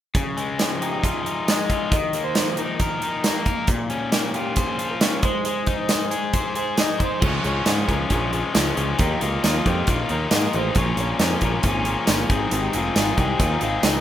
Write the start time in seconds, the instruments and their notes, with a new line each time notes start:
0.15 overdriven electric guitar C#3, kick, closed hi-hat
0.37 overdriven electric guitar G#3, closed hi-hat
0.58 overdriven electric guitar F3, snare, closed hi-hat, tambourine
0.81 overdriven electric guitar D#4, clean electric guitar G4, closed hi-hat
1.03 overdriven electric guitar F4, clean electric guitar G#4, kick, closed hi-hat
1.25 overdriven electric guitar D#4, closed hi-hat
1.48 overdriven electric guitar G#3, clean electric guitar D#5, snare, closed hi-hat, tambourine
1.70 overdriven electric guitar F4, kick, closed hi-hat
1.92 overdriven electric guitar D#3, clean electric guitar D#5, kick, closed hi-hat
2.13 overdriven electric guitar A#3, closed hi-hat
2.24 clean electric guitar C5
2.35 overdriven electric guitar F3, snare, closed hi-hat, tambourine
2.57 overdriven electric guitar D#4, clean electric guitar A#4, closed hi-hat
2.80 overdriven electric guitar A#4, kick, closed hi-hat
3.02 overdriven electric guitar D#4, closed hi-hat
3.24 overdriven electric guitar A#3, snare, closed hi-hat, tambourine
3.46 overdriven electric guitar A#4, kick, closed hi-hat
3.67 overdriven electric guitar A#2, kick, closed hi-hat
3.90 overdriven electric guitar C#4, closed hi-hat
4.12 overdriven electric guitar A#3, snare, closed hi-hat, tambourine
4.34 overdriven electric guitar F4, clean electric guitar G4, closed hi-hat
4.56 clean electric guitar G#4, overdriven electric guitar C5, kick, closed hi-hat
4.79 overdriven electric guitar F4, closed hi-hat
4.90 clean electric guitar A#4
5.00 overdriven electric guitar C#4, snare, closed hi-hat, tambourine
5.23 overdriven electric guitar G#3, clean electric guitar C5, kick, closed hi-hat
5.45 overdriven electric guitar G#3, closed hi-hat
5.66 overdriven electric guitar D#4, kick, closed hi-hat
5.89 overdriven electric guitar G#3, snare, closed hi-hat, tambourine
6.11 overdriven electric guitar G#4, closed hi-hat
6.33 overdriven electric guitar C5, kick, closed hi-hat
6.55 overdriven electric guitar G#4, clean electric guitar C5, closed hi-hat
6.77 overdriven electric guitar D#4, clean electric guitar D#5, snare, closed hi-hat, tambourine
6.99 overdriven electric guitar C5, clean electric guitar C5, kick, closed hi-hat
7.20 picked electric bass C#2, overdriven electric guitar C#3 F3 G#3 C#4 F4, clean electric guitar C#5, kick, crash
7.44 picked electric bass C#2, overdriven electric guitar C#3 F3 G#3 C#4 F4, clean electric guitar C#5, closed hi-hat
7.66 picked electric bass G#2, overdriven electric guitar C#3 F3 G#3 C#4 F4, clean electric guitar G#4, snare, closed hi-hat, tambourine
7.88 picked electric bass C#2, overdriven electric guitar C#3 F3 G#3 C#4 F4, clean electric guitar A#4, kick, closed hi-hat
8.10 picked electric bass A#1, overdriven electric guitar C#3 F3 G#3 C#4 F4, kick, closed hi-hat
8.14 clean electric guitar G#4
8.32 overdriven electric guitar C#3 F3 G#3 C#4 F4, closed hi-hat
8.53 picked electric bass C#2, overdriven electric guitar C#3 F3 G#3 C#4 F4, snare, closed hi-hat, tambourine
8.76 picked electric bass C#2, overdriven electric guitar C#3 F3 G#3 C#4 F4, closed hi-hat
8.98 picked electric bass D#2, overdriven electric guitar D#3 A#3 D#4 F4, clean electric guitar G4, kick, closed hi-hat
9.20 picked electric bass C#2, overdriven electric guitar D#3 A#3 D#4 F4, clean electric guitar F4, closed hi-hat
9.44 picked electric bass D#2, overdriven electric guitar D#3 A#3 D#4 F4, clean electric guitar F4, snare, closed hi-hat, tambourine
9.65 picked electric bass F2, overdriven electric guitar D#3 A#3 D#4 F4, clean electric guitar G4, kick, closed hi-hat
9.87 picked electric bass A#1, overdriven electric guitar D#3 A#3 D#4 F4, clean electric guitar F4, kick, closed hi-hat
10.09 picked electric bass D#2, overdriven electric guitar D#3 A#3 D#4 F4, clean electric guitar A#4, closed hi-hat
10.31 picked electric bass G#2, overdriven electric guitar D#3 A#3 D#4 F4, clean electric guitar D#5, snare, closed hi-hat, tambourine
10.53 picked electric bass A1, overdriven electric guitar D#3 A#3 D#4 F4, clean electric guitar C5, closed hi-hat
10.75 picked electric bass A#1, overdriven electric guitar A#2 F3 A#3 C#4 F4, clean electric guitar C#5, kick, closed hi-hat
10.97 picked electric bass A#1, overdriven electric guitar A#2 F3 A#3 C#4 F4, clean electric guitar C#5, closed hi-hat
11.19 picked electric bass F2, overdriven electric guitar A#2 F3 A#3 C#4 F4, snare, closed hi-hat, tambourine
11.24 clean electric guitar G#4
11.41 picked electric bass A#1, overdriven electric guitar A#2 F3 A#3 C#4 F4, clean electric guitar A#4, kick, closed hi-hat
11.63 picked electric bass G#1, overdriven electric guitar A#2 F3 A#3 C#4 F4, kick, closed hi-hat
11.68 clean electric guitar G#4
11.85 overdriven electric guitar A#2 F3 A#3 C#4 F4, closed hi-hat
12.07 picked electric bass G1, overdriven electric guitar A#2 F3 A#3 C#4 F4, snare, closed hi-hat, tambourine
12.30 picked electric bass G#1, overdriven electric guitar G#2 D#3 G#3 C4 D#4 G#4, kick, closed hi-hat
12.51 picked electric bass G#1, overdriven electric guitar G#2 D#3 G#3 C4 D#4 G#4, clean electric guitar G4, closed hi-hat
12.72 picked electric bass F1, overdriven electric guitar G#2 D#3 G#3 C4 D#4 G#4, closed hi-hat
12.77 clean electric guitar F4
12.95 picked electric bass G#1, overdriven electric guitar G#2 D#3 G#3 C4 D#4 G#4, clean electric guitar F4, snare, closed hi-hat, tambourine
13.17 picked electric bass C2, overdriven electric guitar G#2 D#3 G#3 C4 D#4 G#4, clean electric guitar G4, kick, closed hi-hat
13.38 picked electric bass D#2, overdriven electric guitar G#2 D#3 G#3 C4 D#4 G#4, clean electric guitar F4, kick, closed hi-hat
13.61 picked electric bass G#1, overdriven electric guitar G#2 D#3 G#3 C4 D#4 G#4, clean electric guitar F5, closed hi-hat
13.83 picked electric bass C#2, overdriven electric guitar G#2 D#3 G#3 C4 D#4 G#4, clean electric guitar D#5, snare, closed hi-hat, tambourine